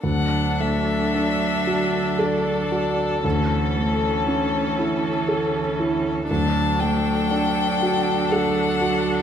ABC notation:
X:1
M:3/4
L:1/8
Q:1/4=59
K:D
V:1 name="Violin"
f e3 d2 | A4- A z | a g3 f2 |]
V:2 name="Violin"
A6- | A6 | A6 |]
V:3 name="Grand piano"
D,, A, D F A F | D,, A, C E A E | D,, A, D F A F |]
V:4 name="Viola"
D6 | C6 | D6 |]
V:5 name="Cello" clef=bass
F,6 | E,6 | F,6 |]